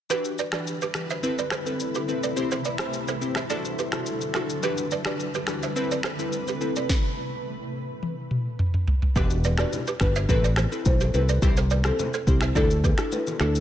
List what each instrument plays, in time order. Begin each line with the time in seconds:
0.10 ambient pad D3 G3 E4 B4, synth keys E3 D4 F#4 G4 B4, balafon G4 B4, shaker
0.25 shaker
0.38 balafon B4 D5, shaker
0.52 synth keys E3 D4 F#4 G4 B4, balafon B4 D5, finger snap, cross-stick, shaker
0.67 shaker
0.81 balafon G4 B4, shaker
0.94 synth keys E3 D4 F#4 G4 B4, finger snap, cross-stick, shaker
1.10 balafon C5 E5, shaker
1.23 ambient pad C3 A3, synth keys C4 E4 A4 B4, shaker
1.38 balafon B4 D5, shaker
1.50 balafon A4 C5, finger snap, cross-stick, shaker
1.66 synth keys C4 E4 A4 B4, shaker
1.80 shaker
1.95 balafon G4 B4, shaker
2.08 synth keys C4 E4 A4 B4, shaker
2.23 balafon B4 D5, shaker
2.36 ambient pad G3 C5, synth keys C4 E4 G4 C5, shaker
2.51 balafon A4 C5, shaker
2.65 balafon B4 D5, shaker
2.78 synth keys C4 E4 G4 C5, finger snap, cross-stick, shaker
2.93 shaker
3.08 balafon A4 C5, shaker
3.21 synth keys C4 E4 G4 C5, shaker
3.35 balafon C5 E5, finger snap, cross-stick, shaker
3.49 ambient pad D3 F#3 A4, synth keys D4 E4 F#4 A4, balafon A4 D5, shaker
3.65 shaker
3.79 balafon G4 B4, shaker
3.92 synth keys D4 E4 F#4 A4, finger snap, cross-stick, shaker
4.06 shaker
4.21 shaker
4.34 synth keys D4 E4 F#4 A4, balafon F#4 A4, finger snap, cross-stick, shaker
4.50 shaker
4.63 ambient pad D3 G3 B4, synth keys E3 D4 F#4 G4 B4, balafon G4 B4, shaker
4.78 shaker
4.91 balafon B4 D5, shaker
5.05 synth keys E3 D4 F#4 G4 B4, balafon B4 D5, finger snap, cross-stick, shaker
5.20 shaker
5.34 balafon G4 B4, shaker
5.47 synth keys E3 D4 F#4 G4 B4, finger snap, cross-stick, shaker
5.63 balafon C5 E5, shaker
5.76 ambient pad C3 A3 B4, synth keys C4 E4 A4 B4, shaker
5.91 balafon B4 D5, shaker
6.03 balafon A4 C5, finger snap, cross-stick, shaker
6.19 synth keys C4 E4 A4 B4, shaker
6.33 shaker
6.47 balafon G4 B4, shaker
6.61 synth keys C4 E4 A4 B4, shaker
6.76 balafon B4 D5, shaker
6.89 kick, snare
8.03 high tom
8.31 mid tom
8.59 mid tom
8.74 mid tom
8.88 floor tom
9.02 floor tom
9.16 fingered electric bass E1, synth keys D4 F#4 G4 B4, balafon G4 B4, kick, low conga, shaker
9.30 shaker
9.44 balafon B4 D5, low bongo, shaker
9.58 synth keys D4 F#4 G4 B4, balafon B4 D5, marimba D5, finger snap, cross-stick, low bongo, shaker
9.73 high bongo, low conga, shaker
9.87 balafon G4 B4, shaker
10.00 fingered electric bass G1, synth keys D4 F#4 G4 B4, marimba B4, finger snap, kick, cross-stick, shaker
10.16 balafon C5 E5, shaker
10.29 fingered electric bass A1, synth keys C4 E4 A4 B4, marimba B4, kick, low conga, shaker
10.44 balafon B4 D5, shaker
10.56 balafon A4 C5, finger snap, cross-stick, low bongo, shaker
10.72 synth keys C4 E4 A4 B4, shaker
10.85 fingered electric bass B1, marimba C5, kick, high bongo, shaker
11.01 balafon G4 B4, low bongo, shaker
11.14 fingered electric bass C2, synth keys C4 E4 A4 B4, marimba B4, high bongo, shaker
11.29 balafon B4 D5, shaker
11.42 fingered electric bass C2, synth keys C4 E4 G4 C5, kick, low conga, shaker
11.57 balafon A4 C5, shaker
11.70 balafon B4 D5, low bongo, shaker
11.84 synth keys C4 E4 G4 C5, marimba A4, finger snap, cross-stick, low bongo, shaker
11.99 high bongo, low conga, shaker
12.14 balafon A4 C5, shaker
12.27 fingered electric bass C2, synth keys C4 E4 G4 C5, marimba G4, kick, shaker
12.41 balafon C5 E5, finger snap, cross-stick, shaker
12.55 fingered electric bass D2, synth keys D4 E4 F#4 A4, balafon A4 D5, marimba A4, kick, low conga, shaker
12.71 shaker
12.84 balafon G4 B4, kick, low bongo, shaker
12.98 synth keys D4 E4 F#4 A4, finger snap, cross-stick, shaker
13.12 marimba B4, high bongo, shaker
13.27 low bongo, shaker
13.40 fingered electric bass D2, synth keys D4 E4 F#4 A4, balafon F#4 A4, marimba A4, finger snap, cross-stick, high bongo, shaker
13.55 shaker